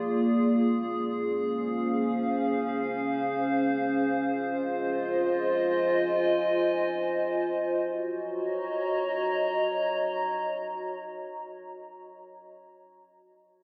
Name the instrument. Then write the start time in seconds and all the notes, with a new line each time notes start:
ambient pad
Already playing: A#3 F4 G#4 D5
0.59 C#4
1.02 F5
1.37 C5
4.17 F4
4.34 D#5
5.48 G#5
7.73 F#4
7.90 C#5
8.03 D#5
8.16 A#5